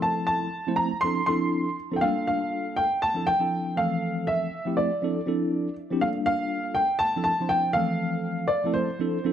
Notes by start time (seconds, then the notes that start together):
Already playing: F3 A3 C4 E4 A4
0.02 A5
0.27 A5
0.67 F3 A3 C4 E4 C5
0.76 A#5
1.01 F3 C4 D4 E4 C6
1.05 A4
1.26 F3 C4 D4 E4 A4 C6
1.91 F3 C4 D4 E4 A4
1.96 G5
2.01 G3 A#3 D4 F4 A4 F5
2.27 F5
2.76 G5
3.02 A5
3.14 F3 C4 D4 E4 A4
3.27 G5
3.39 F3 C4 D4 E4 A4
3.76 E3 F3 A3 C4 A4 F5
4.27 E5
4.65 F3 A3 C4 E4 G4
4.77 D5
5.02 F3 C4 D4 E4 A4
5.26 F3 C4 D4 E4 A4
5.91 F3 C4 D4 E4 G4
6.01 G3 A#3 D4 F4 A4 F5
6.26 F5
6.75 G5
6.99 A5
7.16 F3 C4 D4 E4 A4
7.24 A5
7.40 F3 C4 D4 E4 C5
7.49 G5
7.73 E3 F3 A3 C4 A4 F5
8.48 D5
8.64 F3 A3 C4 E4 A4
8.74 C5
8.99 F3 C4 D4 E4 A4
9.24 F3 C4 D4 E4 A4